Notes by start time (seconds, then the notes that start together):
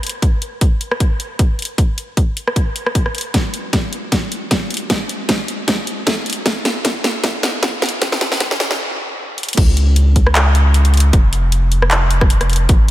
0.03 closed hi-hat
0.07 closed hi-hat
0.09 closed hi-hat
0.22 kick, closed hi-hat
0.42 closed hi-hat
0.61 kick, closed hi-hat
0.81 closed hi-hat
0.91 cross-stick
1.00 kick, closed hi-hat
1.20 closed hi-hat
1.39 kick, closed hi-hat
1.59 closed hi-hat
1.62 closed hi-hat
1.65 closed hi-hat
1.78 kick, closed hi-hat
1.98 closed hi-hat
2.17 kick, closed hi-hat
2.37 closed hi-hat
2.47 cross-stick
2.56 kick, closed hi-hat
2.76 closed hi-hat
2.86 cross-stick
2.95 kick, closed hi-hat
3.06 cross-stick
3.15 closed hi-hat
3.18 closed hi-hat
3.21 closed hi-hat
3.34 kick, snare, closed hi-hat
3.54 closed hi-hat
3.73 kick, snare, closed hi-hat
3.93 closed hi-hat
4.12 kick, snare, closed hi-hat
4.32 closed hi-hat
4.51 kick, snare, closed hi-hat
4.70 closed hi-hat
4.74 closed hi-hat
4.77 closed hi-hat
4.90 kick, snare, closed hi-hat
5.09 closed hi-hat
5.29 kick, snare, closed hi-hat
5.48 closed hi-hat
5.68 kick, snare, closed hi-hat
5.87 closed hi-hat
6.07 kick, snare, closed hi-hat
6.26 closed hi-hat
6.30 closed hi-hat
6.33 closed hi-hat
6.46 kick, snare, closed hi-hat
6.65 snare, closed hi-hat
6.85 kick, snare, closed hi-hat
7.04 snare, closed hi-hat
7.24 kick, snare, closed hi-hat
7.43 snare, closed hi-hat
7.63 kick, snare, closed hi-hat
7.82 snare, closed hi-hat
7.86 closed hi-hat
7.89 closed hi-hat
8.02 kick, snare, closed hi-hat
8.12 snare
8.21 snare, closed hi-hat
8.32 snare
8.40 kick, snare, closed hi-hat
8.51 snare
8.60 snare, closed hi-hat
8.71 snare
9.38 closed hi-hat
9.43 closed hi-hat
9.49 closed hi-hat
9.53 closed hi-hat
9.57 C#2, kick, closed hi-hat, crash
9.77 closed hi-hat
9.96 closed hi-hat
10.16 kick, closed hi-hat
10.27 cross-stick
10.35 clap, closed hi-hat
10.55 closed hi-hat
10.74 closed hi-hat
10.85 closed hi-hat
10.94 closed hi-hat
10.97 closed hi-hat
11.00 closed hi-hat
11.13 F1, kick, closed hi-hat
11.33 closed hi-hat
11.52 closed hi-hat
11.72 closed hi-hat
11.82 cross-stick
11.91 clap, closed hi-hat
12.11 closed hi-hat
12.21 kick, cross-stick
12.30 closed hi-hat
12.41 cross-stick, closed hi-hat
12.50 closed hi-hat
12.53 closed hi-hat
12.56 closed hi-hat
12.69 G#1, kick, closed hi-hat